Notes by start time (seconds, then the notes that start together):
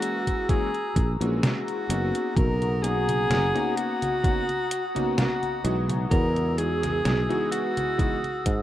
Already playing: E3 G#3 A#3 C#4 F#4 G#4 A#5 E6
0.02 closed hi-hat
0.27 kick, closed hi-hat
0.49 E3 G#3 A#3 C#4 F#4 G#4, kick, closed hi-hat
0.74 closed hi-hat
0.96 A#1, kick, closed hi-hat
1.20 A#1 E3 G#3 A#3 C#4 F#4, closed hi-hat
1.42 F#4, snare, closed hi-hat
1.68 closed hi-hat
1.89 F#1 A#3 B3 C#4 D#4 F#4, closed hi-hat
2.15 closed hi-hat
2.36 B1 A#4 F#5 A#5 D#6, kick, closed hi-hat, high conga
2.62 closed hi-hat, high conga
2.82 A#3 B3 C#4 D#4 F#4 G#4, closed hi-hat
3.09 closed hi-hat, high conga
3.30 F#1, snare, closed hi-hat, high conga
3.54 A#3 B3 C#4 D#4 F#4, closed hi-hat, high conga
3.76 F#4, closed hi-hat
4.02 closed hi-hat, high conga
4.23 A#3 B3 C#4 D#4 F#4, kick, closed hi-hat, high conga
4.49 closed hi-hat, high conga
4.71 closed hi-hat
4.95 A#3 B3 C#4 D#4 F#4, closed hi-hat, high conga
5.17 F#4, snare, closed hi-hat, high conga
5.43 closed hi-hat, high conga
5.64 B1 E3 G#3 B3 D#4 F#4, closed hi-hat
5.90 closed hi-hat, high conga
6.11 E2 G#4 A#4 E6, kick, closed hi-hat, high conga
6.36 closed hi-hat, high conga
6.57 E3 G#3 B3 D#4 F#4 G#4, closed hi-hat
6.83 snare, closed hi-hat, high conga
7.05 B1, snare, closed hi-hat, high conga
7.29 E3 G#3 B3 D#4 F#4, closed hi-hat, high conga
7.51 F#4, closed hi-hat
7.77 closed hi-hat, high conga
7.98 E3 G#3 B3 D#4 F#4, kick, closed hi-hat, high conga
8.24 closed hi-hat, high conga
8.46 G#2, kick, closed hi-hat